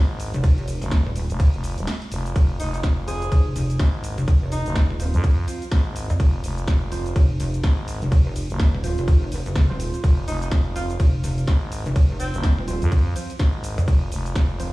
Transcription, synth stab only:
3.08 3.23 F3 medium
3.08 3.23 C4 medium
3.08 3.23 F4 medium
3.08 3.23 C5 loud
5.00 5.45 F3 medium
5.00 5.45 C4 medium
5.00 5.45 F4 medium
5.00 5.45 C5 loud
5.48 5.63 F3 medium
5.48 5.63 C4 medium
5.48 5.63 F4 medium
5.48 5.63 C5 medium
6.92 7.07 F3 medium
6.92 7.07 C4 medium
6.92 7.07 F4 medium
6.92 7.07 C5 loud
8.84 9.29 F3 medium
8.84 9.29 C4 medium
8.84 9.29 F4 medium
8.84 9.29 C5 loud
9.70 10.73 F3 loud
9.70 10.73 C4 medium
9.70 10.73 F4 medium
9.70 10.73 C5 loud
10.76 10.91 F3 medium
10.76 10.91 C4 medium
10.76 10.91 F4 medium
10.76 10.91 C5 loud
12.68 13.13 F3 medium
12.68 13.13 C4 medium
12.68 13.13 F4 medium
12.68 13.13 C5 loud
13.16 13.31 F3 medium
13.16 13.31 C4 medium
13.16 13.31 F4 medium
13.16 13.31 C5 medium
14.60 14.73 F3 medium
14.60 14.73 C4 medium
14.60 14.73 F4 medium
14.60 14.73 C5 loud

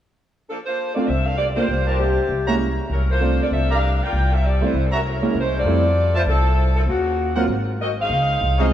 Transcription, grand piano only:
0.96 1.07 A3 medium
0.96 1.07 C4 medium
0.96 1.07 D4 soft
0.96 1.07 F4 medium
1.56 1.68 A3 soft
1.56 1.68 A#3 soft
1.56 1.68 D4 soft
1.56 1.68 F4 medium
2.47 2.59 G#3 soft
2.47 2.59 A#3 soft
2.47 2.59 C#4 soft
2.47 2.59 E4 medium
3.21 3.66 A3 soft
3.21 3.66 C4 soft
3.21 3.67 D4 soft
3.21 3.67 F4 medium
4.61 4.73 G3 medium
4.61 4.73 A3 soft
4.61 4.73 C4 soft
4.61 4.73 E4 medium
5.22 5.34 G#3 soft
5.22 5.34 A#3 soft
5.22 5.34 C#4 soft
5.22 5.34 E4 medium
5.66 5.83 G3 soft
5.66 5.83 A3 soft
5.66 5.83 C4 soft
5.66 5.83 E4 medium
7.36 7.48 F#3 medium
7.36 7.48 A#3 soft
7.36 7.48 C4 soft
7.36 7.48 F4 medium
8.60 8.71 G#3 medium
8.60 8.71 C4 soft
8.60 8.71 D#4 soft
8.60 8.71 F4 medium

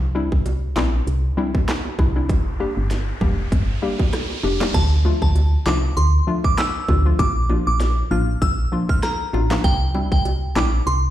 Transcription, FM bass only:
0.00 0.24 C2 loud
0.32 0.68 C2 medium
0.76 1.01 A#1 medium
1.07 1.32 C2 loud
1.99 2.31 C2 loud
2.29 2.69 G1 loud
2.77 3.13 G1 loud
3.21 3.46 F1 loud
3.52 3.77 G1 loud
4.44 4.69 F1 medium
4.74 5.14 D2 loud
5.22 5.58 D2 loud
5.66 5.91 C2 medium
5.97 6.22 D2 loud
6.88 7.14 D2 loud
7.19 7.58 A#1 loud
7.67 8.03 A#1 medium
8.11 8.36 A1 loud
8.42 8.67 A#1 loud
9.34 9.59 A1 medium
9.64 10.03 C2 loud
10.12 10.48 C2 medium
10.56 10.81 A#1 loud
10.87 11.10 C2 loud

